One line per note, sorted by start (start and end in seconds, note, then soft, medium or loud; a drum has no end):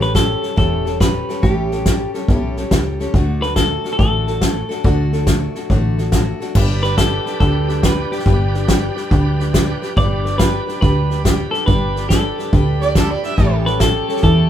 0.00 0.36 A1 medium
0.00 0.13 G3 soft
0.00 0.13 C#4 soft
0.00 0.14 G4 soft
0.00 0.14 A4 soft
0.00 0.15 B4 medium
0.00 snare soft
0.14 0.42 G3 medium
0.14 0.42 C#4 medium
0.14 0.42 G4 medium
0.14 0.41 A4 medium
0.14 kick medium
0.14 snare medium
0.14 hi-hat pedal medium
0.42 0.56 G3 soft
0.42 0.56 C#4 soft
0.42 0.56 G4 soft
0.42 0.56 A4 soft
0.42 snare soft
0.56 1.22 E1 medium
0.56 0.85 A2 medium
0.56 0.85 E3 medium
0.56 0.86 G3 medium
0.56 0.86 C#4 medium
0.56 0.85 G4 medium
0.56 0.84 A4 medium
0.56 kick medium
0.56 snare soft
0.85 0.99 G3 soft
0.85 0.99 C#4 soft
0.85 1.01 G4 soft
0.85 1.00 A4 soft
0.85 snare soft
1.00 1.29 G3 medium
1.00 1.29 C#4 medium
1.00 1.28 G4 medium
1.00 1.28 A4 medium
1.00 1.45 B4 medium
1.00 kick medium
1.00 snare loud
1.00 hi-hat pedal medium
1.29 1.42 G3 soft
1.29 1.42 C#4 soft
1.29 1.43 G4 medium
1.29 1.43 A4 soft
1.29 snare soft
1.42 2.07 A1 medium
1.42 1.71 A2 medium
1.42 1.71 E3 medium
1.42 1.72 G3 medium
1.42 1.72 C#4 medium
1.42 1.71 G4 medium
1.42 1.71 A4 medium
1.42 kick medium
1.42 snare soft
1.71 1.85 G3 soft
1.71 1.86 C#4 soft
1.71 1.86 G4 soft
1.71 1.86 A4 soft
1.71 snare soft
1.86 2.14 G3 soft
1.86 2.14 C#4 medium
1.86 2.14 G4 medium
1.86 2.13 A4 medium
1.86 kick medium
1.86 snare medium
1.86 hi-hat pedal medium
2.14 2.29 G3 soft
2.14 2.29 C#4 soft
2.14 2.29 G4 soft
2.14 2.29 A4 medium
2.14 snare soft
2.28 2.65 B1 medium
2.28 2.58 A2 medium
2.28 2.58 E3 medium
2.28 2.58 G3 medium
2.28 2.58 C#4 medium
2.28 2.57 G4 medium
2.28 2.56 A4 medium
2.28 kick medium
2.28 snare soft
2.56 2.71 G3 soft
2.56 2.71 C#4 soft
2.56 2.71 G4 soft
2.56 2.72 A4 medium
2.56 snare soft
2.71 3.08 C#2 medium
2.71 3.00 G3 medium
2.71 3.00 C#4 medium
2.71 2.99 G4 medium
2.71 2.99 A4 medium
2.71 kick medium
2.71 snare loud
2.71 hi-hat pedal medium
3.00 3.14 G3 soft
3.00 3.15 C#4 medium
3.00 3.15 G4 medium
3.00 3.14 A4 medium
3.00 snare soft
3.14 3.78 D2 medium
3.14 3.43 D3 medium
3.14 3.43 A3 medium
3.14 3.43 D4 medium
3.14 3.42 F#4 medium
3.14 3.42 A4 medium
3.14 kick medium
3.14 snare soft
3.42 3.56 D4 soft
3.42 3.57 F#4 soft
3.42 3.57 A4 soft
3.42 3.56 B4 medium
3.42 snare soft
3.56 3.85 A3 medium
3.56 3.85 D4 soft
3.56 3.84 F#4 medium
3.56 3.83 A4 medium
3.56 kick medium
3.56 snare medium
3.56 hi-hat pedal medium
3.84 3.99 D4 soft
3.84 3.99 F#4 soft
3.84 3.99 A4 medium
3.84 snare soft
3.93 3.96 A4 medium
3.99 4.63 A1 medium
3.99 4.28 D3 medium
3.99 4.28 A3 medium
3.99 4.28 D4 medium
3.99 4.27 F#4 medium
3.99 4.26 A4 medium
3.99 kick medium
3.99 snare soft
4.27 4.42 D4 soft
4.27 4.42 F#4 soft
4.27 4.42 A4 soft
4.27 snare soft
4.41 4.70 A3 soft
4.41 4.70 D4 soft
4.41 4.69 F#4 medium
4.41 4.68 A4 medium
4.41 kick medium
4.41 snare loud
4.41 hi-hat pedal medium
4.69 4.83 D4 soft
4.69 4.84 F#4 soft
4.69 4.84 A4 medium
4.69 snare soft
4.83 5.49 D2 medium
4.83 5.12 D3 medium
4.83 5.13 A3 medium
4.83 5.13 D4 medium
4.83 5.13 F#4 medium
4.83 5.12 A4 medium
4.83 kick medium
4.83 snare soft
5.13 5.27 D4 soft
5.13 5.28 F#4 soft
5.13 5.28 A4 medium
5.13 snare soft
5.27 5.56 A3 medium
5.27 5.56 D4 medium
5.27 5.56 F#4 medium
5.27 5.54 A4 medium
5.27 kick medium
5.27 snare loud
5.27 hi-hat pedal medium
5.55 5.70 D4 soft
5.55 5.70 F#4 soft
5.55 5.70 A4 medium
5.55 snare soft
5.70 6.34 A1 medium
5.70 5.98 D3 medium
5.70 5.99 A3 medium
5.70 5.98 D4 medium
5.70 5.98 F#4 medium
5.70 5.97 A4 medium
5.70 kick medium
5.70 snare soft
5.98 6.12 D4 soft
5.98 6.13 F#4 soft
5.98 6.13 A4 soft
5.98 snare soft
6.12 6.41 A3 medium
6.12 6.41 D4 medium
6.12 6.40 F#4 medium
6.12 6.39 A4 medium
6.12 kick medium
6.12 snare medium
6.12 hi-hat pedal medium
6.40 6.54 D4 soft
6.40 6.56 F#4 medium
6.40 6.55 A4 soft
6.40 snare soft
6.55 7.20 G1 medium
6.55 6.84 G3 medium
6.55 6.84 D4 medium
6.55 9.93 D4 medium
6.55 6.84 G4 medium
6.55 9.94 G4 medium
6.55 9.93 B4 medium
6.55 6.83 B4 medium
6.55 kick medium
6.55 snare soft
6.55 crash medium
6.83 6.97 D4 soft
6.83 6.98 G4 soft
6.83 6.99 B4 soft
6.83 snare soft
6.98 7.26 G3 medium
6.98 7.27 D4 medium
6.98 7.26 G4 soft
6.98 7.38 A4 medium
6.98 7.25 B4 medium
6.98 kick medium
6.98 snare loud
6.98 hi-hat pedal medium
7.26 7.39 D4 soft
7.26 7.40 G4 soft
7.26 7.40 B4 medium
7.26 snare soft
7.40 8.05 D2 medium
7.40 7.69 G3 medium
7.40 7.69 D4 medium
7.40 7.68 G4 medium
7.40 7.85 A4 medium
7.40 7.67 B4 medium
7.40 kick medium
7.40 snare soft
7.69 7.82 D4 soft
7.69 7.83 G4 soft
7.69 7.84 B4 soft
7.69 snare soft
7.83 8.12 G3 medium
7.83 8.11 D4 medium
7.83 8.11 G4 medium
7.83 8.10 B4 medium
7.83 kick medium
7.83 snare loud
7.83 hi-hat pedal medium
8.11 8.25 D4 soft
8.11 8.25 G4 soft
8.11 8.26 B4 soft
8.11 snare soft
8.19 snare soft
8.25 8.90 G1 medium
8.25 8.54 G3 medium
8.25 8.54 D4 medium
8.25 8.55 G4 medium
8.25 8.53 B4 medium
8.25 kick loud
8.25 snare soft
8.54 8.67 D4 soft
8.54 8.68 G4 soft
8.54 8.68 B4 soft
8.54 snare soft
8.68 8.97 G3 medium
8.68 8.97 D4 medium
8.68 8.96 G4 medium
8.68 8.95 B4 medium
8.68 kick medium
8.68 snare loud
8.68 hi-hat pedal medium
8.96 9.11 D4 soft
8.96 9.12 G4 soft
8.96 9.11 B4 medium
8.96 snare soft
9.11 9.75 D2 medium
9.11 9.40 G3 medium
9.11 9.40 D4 medium
9.11 9.40 G4 medium
9.11 9.38 B4 medium
9.11 kick medium
9.11 snare soft
9.39 9.53 D4 soft
9.39 9.54 G4 soft
9.39 9.54 B4 medium
9.39 snare soft
9.53 9.82 G3 medium
9.53 9.83 D4 medium
9.53 9.82 G4 medium
9.53 9.81 B4 medium
9.53 kick medium
9.53 snare loud
9.53 hi-hat pedal medium
9.82 9.96 D4 soft
9.82 9.96 G4 medium
9.82 9.97 B4 medium
9.82 snare soft
9.96 10.61 G1 medium
9.96 10.25 G3 medium
9.96 13.34 D4 medium
9.96 10.25 D4 medium
9.96 13.34 G4 medium
9.96 10.25 G4 medium
9.96 13.34 B4 medium
9.96 10.24 B4 medium
9.96 10.37 D5 medium
9.96 kick loud
9.96 snare soft
10.25 10.39 D4 soft
10.25 10.40 G4 soft
10.25 10.40 B4 medium
10.25 snare soft
10.39 10.68 G3 medium
10.39 10.68 D4 medium
10.39 10.67 G4 medium
10.39 10.66 B4 medium
10.39 kick medium
10.39 snare loud
10.39 hi-hat pedal medium
10.67 10.81 D4 soft
10.67 10.81 G4 soft
10.67 10.82 B4 soft
10.67 snare soft
10.81 11.46 D2 medium
10.81 11.10 G3 medium
10.81 11.10 D4 medium
10.81 11.10 G4 medium
10.81 11.09 B4 medium
10.81 kick medium
10.81 snare soft
11.10 11.23 D4 soft
11.10 11.24 G4 medium
11.10 11.24 B4 soft
11.10 snare soft
11.24 11.53 G3 medium
11.24 11.53 D4 medium
11.24 11.52 G4 medium
11.24 11.51 B4 medium
11.24 kick medium
11.24 snare loud
11.24 hi-hat pedal medium
11.51 11.65 D4 soft
11.51 11.66 G4 soft
11.51 11.66 A4 medium
11.51 11.67 B4 medium
11.51 snare soft
11.66 12.32 G1 medium
11.66 11.95 G3 medium
11.66 11.95 D4 medium
11.66 11.96 G4 medium
11.66 11.95 B4 medium
11.66 kick loud
11.66 snare soft
11.96 12.09 D4 soft
11.96 12.10 G4 soft
11.96 12.10 B4 soft
11.96 snare soft
12.09 12.38 G3 medium
12.09 12.38 D4 medium
12.09 12.38 G4 medium
12.09 12.91 A4 medium
12.09 12.37 B4 medium
12.09 kick medium
12.09 snare loud
12.09 hi-hat pedal medium
12.38 12.52 D4 soft
12.38 12.53 G4 soft
12.38 12.53 B4 soft
12.38 snare soft
12.53 13.17 D2 medium
12.53 12.81 G3 medium
12.53 12.82 D4 medium
12.53 12.80 G4 medium
12.53 12.79 B4 medium
12.53 kick loud
12.53 snare soft
12.80 12.95 D4 soft
12.80 12.96 G4 soft
12.80 12.95 B4 soft
12.80 12.95 D5 medium
12.80 snare soft
12.95 13.24 G3 medium
12.95 13.24 D4 medium
12.95 13.24 G4 medium
12.95 13.12 A4 medium
12.95 13.22 B4 medium
12.95 kick medium
12.95 snare loud
12.95 hi-hat pedal medium
13.10 13.24 D5 medium
13.23 13.39 D4 medium
13.23 13.38 G4 soft
13.23 13.38 B4 medium
13.23 13.52 E5 medium
13.23 snare soft
13.38 14.02 A1 medium
13.38 13.66 A2 medium
13.38 13.67 E3 medium
13.38 13.67 G3 medium
13.38 14.50 C#4 medium
13.38 13.66 C#4 medium
13.38 14.50 G4 medium
13.38 13.66 G4 medium
13.38 14.50 A4 medium
13.38 13.65 A4 medium
13.38 kick medium
13.38 snare soft
13.66 13.79 G3 soft
13.66 13.80 C#4 soft
13.66 13.81 G4 soft
13.66 13.81 A4 soft
13.66 13.81 B4 medium
13.66 snare soft
13.80 14.09 G3 medium
13.80 14.08 C#4 medium
13.80 14.07 G4 medium
13.80 14.07 A4 medium
13.80 kick medium
13.80 snare loud
13.80 hi-hat pedal medium
14.08 14.22 G3 soft
14.08 14.22 C#4 soft
14.08 14.23 G4 soft
14.08 14.23 A4 medium
14.08 snare soft
14.16 snare soft
14.22 14.50 E2 medium
14.22 14.50 A2 medium
14.22 14.50 E3 medium
14.22 14.50 G3 medium
14.22 14.50 C#4 medium
14.22 14.50 G4 medium
14.22 14.49 A4 medium
14.22 kick medium
14.22 snare soft